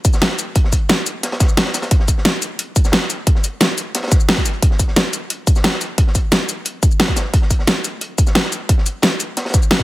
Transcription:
0.05 kick loud
0.05 closed hi-hat medium
0.05 shaker medium
0.13 snare medium
0.13 shaker soft
0.22 snare loud
0.22 closed hi-hat medium
0.29 snare medium
0.38 closed hi-hat medium
0.38 shaker medium
0.55 kick loud
0.55 closed hi-hat medium
0.64 snare soft
0.73 kick medium
0.73 closed hi-hat medium
0.73 shaker medium
0.89 snare loud
0.89 closed hi-hat medium
0.89 closed hi-hat loud
0.89 shaker soft
1.06 closed hi-hat medium
1.06 shaker medium
1.23 snare loud
1.23 closed hi-hat medium
1.32 snare loud
1.32 closed hi-hat medium
1.40 kick loud
1.40 snare loud
1.40 closed hi-hat medium
1.40 shaker medium
1.49 shaker soft
1.57 snare loud
1.57 closed hi-hat medium
1.65 snare loud
1.65 closed hi-hat medium
1.74 snare loud
1.74 closed hi-hat medium
1.74 shaker medium
1.82 snare loud
1.82 closed hi-hat medium
1.82 shaker soft
1.91 kick loud
1.91 closed hi-hat medium
1.91 closed hi-hat loud
2.00 snare medium
2.08 kick medium
2.08 closed hi-hat medium
2.08 shaker medium
2.18 snare soft
2.25 snare loud
2.25 closed hi-hat medium
2.25 closed hi-hat loud
2.42 closed hi-hat medium
2.42 shaker medium
2.59 closed hi-hat loud
2.59 closed hi-hat medium
2.76 kick loud
2.76 closed hi-hat medium
2.76 shaker medium
2.85 snare medium
2.85 shaker soft
2.92 snare loud
2.92 closed hi-hat medium
3.01 snare medium
3.10 closed hi-hat medium
3.10 shaker medium
3.27 kick loud
3.27 closed hi-hat medium
3.27 closed hi-hat loud
3.35 snare soft
3.44 closed hi-hat medium
3.44 shaker medium
3.60 snare loud
3.60 closed hi-hat medium
3.60 closed hi-hat loud
3.78 closed hi-hat medium
3.78 shaker medium
3.95 snare loud
3.95 closed hi-hat loud
3.95 closed hi-hat medium
4.03 snare medium
4.03 closed hi-hat medium
4.08 snare loud
4.08 closed hi-hat medium
4.12 kick loud
4.12 closed hi-hat medium
4.12 shaker medium
4.20 shaker soft
4.28 snare loud
4.28 closed hi-hat loud
4.28 open hi-hat medium
4.37 kick medium
4.37 snare soft
4.46 closed hi-hat medium
4.46 shaker medium
4.53 closed hi-hat soft
4.62 kick loud
4.62 closed hi-hat loud
4.71 snare soft
4.79 kick medium
4.79 closed hi-hat medium
4.79 shaker medium
4.88 snare soft
4.96 snare loud
4.96 closed hi-hat loud
4.96 closed hi-hat medium
5.13 closed hi-hat medium
5.13 shaker medium
5.30 closed hi-hat medium
5.30 closed hi-hat loud
5.47 kick loud
5.47 closed hi-hat medium
5.47 shaker medium
5.56 snare medium
5.56 shaker soft
5.64 snare loud
5.64 closed hi-hat medium
5.73 snare medium
5.81 closed hi-hat medium
5.81 shaker medium
5.98 kick loud
5.98 closed hi-hat medium
6.07 snare soft
6.15 kick medium
6.15 closed hi-hat medium
6.15 shaker medium
6.32 snare loud
6.32 closed hi-hat medium
6.32 shaker soft
6.49 closed hi-hat medium
6.49 shaker medium
6.65 closed hi-hat medium
6.82 kick loud
6.82 closed hi-hat medium
6.82 shaker medium
6.91 shaker soft
7.00 snare loud
7.00 closed hi-hat medium
7.08 kick medium
7.16 snare loud
7.16 closed hi-hat medium
7.16 shaker medium
7.34 kick loud
7.34 closed hi-hat medium
7.42 snare soft
7.50 kick medium
7.50 closed hi-hat medium
7.50 shaker medium
7.59 snare soft
7.67 snare loud
7.67 closed hi-hat medium
7.84 closed hi-hat medium
7.84 shaker medium
8.01 closed hi-hat medium
8.18 kick loud
8.18 closed hi-hat medium
8.18 shaker medium
8.27 snare medium
8.27 shaker soft
8.35 snare loud
8.35 closed hi-hat medium
8.45 snare medium
8.52 closed hi-hat medium
8.52 shaker medium
8.69 kick loud
8.69 closed hi-hat medium
8.78 snare soft
8.86 closed hi-hat medium
8.86 shaker medium
9.02 snare loud
9.02 closed hi-hat medium
9.19 closed hi-hat medium
9.19 shaker medium
9.37 snare loud
9.37 closed hi-hat medium
9.45 snare medium
9.45 closed hi-hat medium
9.49 snare medium
9.49 closed hi-hat medium
9.54 kick loud
9.54 closed hi-hat medium
9.54 shaker medium
9.62 shaker soft
9.71 snare loud
9.71 closed hi-hat medium
9.71 open hi-hat medium
9.79 kick medium
9.79 snare soft

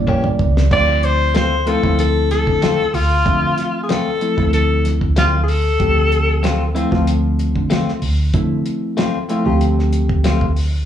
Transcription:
0.00 0.48 G3 loud
0.00 0.48 A#3 medium
0.00 0.48 C#4 medium
0.00 0.49 E4 loud
0.07 0.36 A#1 medium
0.07 0.27 E3 medium
0.07 0.27 A#3 loud
0.07 0.28 C#4 loud
0.07 0.28 G4 loud
0.07 0.23 C#5 medium
0.07 kick medium
0.24 0.68 D5 medium
0.24 mid tom medium
0.39 0.68 C#2 medium
0.39 kick loud
0.57 snare medium
0.71 1.70 D2 loud
0.71 1.50 F3 medium
0.71 0.91 A3 medium
0.71 1.50 A3 medium
0.71 1.50 C4 medium
0.71 0.91 C4 medium
0.71 1.50 E4 medium
0.71 0.92 F4 medium
0.71 1.06 D5 loud
0.71 kick loud
0.71 crash loud
1.03 1.36 C5 loud
1.03 closed hi-hat medium
1.34 1.54 A3 medium
1.34 1.55 C4 medium
1.34 1.55 F4 medium
1.34 1.69 C5 medium
1.34 snare loud
1.34 closed hi-hat medium
1.66 1.80 F3 medium
1.66 1.83 A3 soft
1.66 1.80 A3 medium
1.66 1.80 C4 medium
1.66 1.84 C4 medium
1.66 1.81 E4 medium
1.66 1.82 F4 medium
1.66 1.99 A4 medium
1.66 closed hi-hat medium
1.83 2.40 D2 medium
1.83 2.86 F3 medium
1.83 2.87 A3 medium
1.83 2.87 C4 medium
1.83 2.03 C4 soft
1.83 2.87 E4 medium
1.83 2.02 F4 medium
1.83 kick medium
1.99 2.28 A4 medium
1.99 closed hi-hat medium
2.31 2.96 A4 medium
2.31 snare soft
2.31 closed hi-hat medium
2.47 2.75 D3 medium
2.47 kick medium
2.62 2.82 A3 medium
2.62 2.82 C4 medium
2.62 2.83 F4 medium
2.62 snare loud
2.62 closed hi-hat medium
2.79 muted fingered electric bass stroke soft
2.94 3.22 D2 medium
2.94 3.82 F4 loud
2.94 open hi-hat medium
3.26 3.54 D3 loud
3.26 4.04 F3 medium
3.26 4.04 A3 medium
3.26 4.04 C4 medium
3.26 4.05 E5 medium
3.26 kick loud
3.26 closed hi-hat medium
3.58 snare soft
3.58 closed hi-hat medium
3.83 3.92 G#4 medium
3.89 4.09 A3 medium
3.89 4.09 C4 medium
3.89 4.10 F4 medium
3.89 4.53 A4 medium
3.89 snare loud
3.89 closed hi-hat medium
4.21 4.34 F3 medium
4.21 4.35 A3 medium
4.21 4.35 C4 medium
4.21 4.35 E4 medium
4.21 closed hi-hat medium
4.37 4.94 D2 medium
4.37 5.41 F3 medium
4.37 5.41 A3 medium
4.37 5.41 C4 medium
4.37 5.41 E4 medium
4.37 kick medium
4.53 4.88 A4 medium
4.53 closed hi-hat medium
4.85 snare soft
4.85 closed hi-hat medium
5.01 5.71 D2 loud
5.01 kick medium
5.16 5.36 A3 medium
5.16 5.36 C4 medium
5.16 5.40 F4 medium
5.16 5.37 F4 medium
5.16 snare loud
5.16 closed hi-hat medium
5.43 5.51 G#4 medium
5.48 6.76 A4 medium
5.48 open hi-hat medium
5.80 6.79 D2 medium
5.80 6.58 F3 medium
5.80 6.58 A3 medium
5.80 6.59 C4 medium
5.80 6.59 G4 medium
5.80 kick loud
5.80 closed hi-hat medium
6.12 closed hi-hat medium
6.43 6.63 A3 medium
6.43 6.63 C4 loud
6.43 6.64 F4 loud
6.43 snare loud
6.43 closed hi-hat medium
6.75 6.89 F3 medium
6.75 6.92 A3 medium
6.75 6.89 A3 medium
6.75 6.89 C4 medium
6.75 6.92 C4 medium
6.75 6.89 E4 loud
6.75 6.90 F4 medium
6.75 closed hi-hat medium
6.91 7.48 D2 medium
6.91 7.95 F3 medium
6.91 7.95 A3 medium
6.91 7.96 C4 medium
6.91 7.11 C4 soft
6.91 7.10 F4 medium
6.91 7.96 F4 medium
6.91 kick medium
6.91 snare soft
7.07 closed hi-hat medium
7.39 closed hi-hat medium
7.55 7.84 D3 medium
7.55 kick medium
7.70 7.90 A3 medium
7.70 7.90 C4 medium
7.70 7.91 F4 medium
7.70 snare loud
7.70 closed hi-hat medium
7.87 muted fingered electric bass stroke soft
7.87 snare soft
8.02 8.30 D2 medium
8.02 open hi-hat medium
8.34 8.62 D3 loud
8.34 9.13 F3 medium
8.34 9.13 A3 medium
8.34 9.13 C4 medium
8.34 9.13 E4 medium
8.34 kick loud
8.34 closed hi-hat medium
8.66 closed hi-hat medium
8.97 9.17 A3 medium
8.97 9.18 C4 loud
8.97 9.18 F4 medium
8.97 snare loud
8.97 closed hi-hat medium
9.29 9.43 F3 medium
9.29 9.46 A3 medium
9.29 9.43 A3 medium
9.29 9.43 C4 medium
9.29 9.47 C4 medium
9.29 9.43 E4 medium
9.29 9.44 F4 medium
9.29 closed hi-hat medium
9.46 10.02 D2 medium
9.46 10.50 F3 medium
9.46 10.50 A3 medium
9.46 10.50 C4 medium
9.46 9.66 C4 soft
9.46 9.64 F4 medium
9.46 10.50 G4 medium
9.61 closed hi-hat medium
9.79 snare soft
9.93 closed hi-hat medium
10.09 10.79 D2 medium
10.09 kick medium
10.24 10.44 A3 medium
10.24 10.45 C4 medium
10.24 10.45 F4 medium
10.24 snare loud
10.24 closed hi-hat medium
10.41 kick medium
10.56 open hi-hat medium

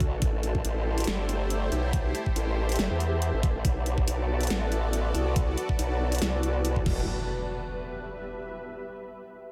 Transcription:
0.00 0.20 D2 medium
0.00 0.18 D3 medium
0.00 0.18 D4 medium
0.00 0.18 F#4 medium
0.00 0.22 F#4 medium
0.00 0.18 A4 medium
0.00 0.76 A4 medium
0.00 1.60 D5 medium
0.00 6.86 A5 medium
0.00 kick loud
0.00 closed hi-hat medium
0.22 0.63 A1 medium
0.22 3.61 A3 medium
0.22 3.61 E4 medium
0.22 3.61 G4 medium
0.22 3.65 G4 medium
0.22 3.61 C5 medium
0.22 kick loud
0.22 closed hi-hat medium
0.34 3.65 C5 medium
0.43 closed hi-hat soft
0.55 kick medium
0.65 1.06 A1 medium
0.65 closed hi-hat medium
0.98 closed hi-hat soft
1.00 closed hi-hat medium
1.04 1.70 G1 loud
1.04 5.00 E5 medium
1.04 snare loud
1.04 closed hi-hat medium
1.29 closed hi-hat soft
1.50 closed hi-hat medium
1.72 2.13 B1 medium
1.72 closed hi-hat soft
1.93 kick loud
1.93 closed hi-hat medium
2.15 closed hi-hat soft
2.26 kick medium
2.36 2.77 A1 medium
2.36 closed hi-hat medium
2.69 closed hi-hat soft
2.72 closed hi-hat medium
2.76 snare loud
2.76 closed hi-hat medium
2.79 2.89 G1 medium
2.79 closed hi-hat medium
2.90 3.32 E2 loud
3.00 closed hi-hat soft
3.22 closed hi-hat medium
3.33 3.53 A1 loud
3.43 kick loud
3.43 closed hi-hat medium
3.55 3.63 A1 medium
3.65 4.06 B1 loud
3.65 6.83 B3 medium
3.65 6.83 F#4 medium
3.65 6.86 F#4 medium
3.65 6.83 A4 medium
3.65 6.83 D5 medium
3.65 kick loud
3.65 closed hi-hat medium
3.81 6.86 D5 medium
3.86 closed hi-hat medium
3.98 kick medium
4.07 4.49 B1 medium
4.07 closed hi-hat medium
4.18 6.86 B4 medium
4.41 closed hi-hat soft
4.43 closed hi-hat medium
4.47 5.13 A1 loud
4.47 snare loud
4.47 closed hi-hat medium
4.50 closed hi-hat medium
4.72 closed hi-hat soft
4.93 closed hi-hat medium
5.15 5.56 C2 medium
5.15 closed hi-hat medium
5.36 kick loud
5.36 closed hi-hat medium
5.58 closed hi-hat medium
5.69 kick medium
5.79 6.20 B1 medium
5.79 closed hi-hat medium
6.12 closed hi-hat soft
6.15 closed hi-hat medium
6.18 snare loud
6.18 closed hi-hat medium
6.22 6.86 C2 medium
6.22 closed hi-hat medium
6.43 closed hi-hat medium
6.65 closed hi-hat medium
6.76 kick medium
6.86 7.06 E1 loud
6.86 8.53 G4 medium
6.86 kick loud
6.86 crash medium
6.86 impact medium
6.93 8.53 B4 medium
7.21 8.75 E5 medium
7.27 8.75 B5 medium

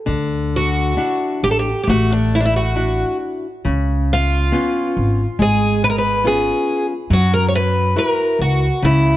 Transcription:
0.06 0.95 D2 medium
0.06 0.94 D3 medium
0.56 1.40 F#4 medium
0.97 1.69 D4 soft
0.97 1.69 E4 soft
0.97 1.69 F#5 soft
1.43 1.72 A1 medium
1.43 1.50 G4 medium
1.51 1.57 A4 medium
1.59 1.82 G4 medium
1.84 2.73 A3 medium
1.84 1.88 G4 medium
1.88 3.02 A1 medium
1.88 2.11 F#4 medium
2.12 2.34 D4 medium
2.35 2.39 E4 medium
2.40 2.44 D4 medium
2.46 2.55 E4 medium
2.56 3.17 F#4 medium
2.75 3.46 D4 soft
2.75 3.46 E4 soft
2.75 3.46 F#4 medium
3.65 4.50 C#2 medium
3.65 4.50 C#3 medium
4.13 5.42 F4 medium
4.52 5.21 B3 soft
4.52 5.21 C#4 soft
4.52 5.21 F4 medium
4.97 5.24 G#1 medium
5.39 6.50 G#1 medium
5.39 6.21 G#3 medium
5.39 5.84 G#4 medium
5.84 5.86 B4 medium
5.90 5.95 A#4 medium
5.98 6.24 B4 medium
6.24 6.92 B3 soft
6.24 6.93 C#4 soft
6.24 6.93 F4 soft
6.24 6.86 G#4 medium
7.10 7.94 F#2 medium
7.10 7.94 F#3 medium
7.10 7.32 F#4 medium
7.34 7.48 A#4 medium
7.49 7.54 C#5 medium
7.55 7.94 B4 loud
7.96 8.66 E4 soft
7.96 8.65 F#4 soft
7.96 8.66 A#4 medium
7.96 8.41 A#4 medium
8.39 8.68 C#2 medium
8.39 8.84 F#4 medium
8.82 9.17 C#2 medium
8.82 9.17 C#3 medium
8.82 9.17 E4 medium

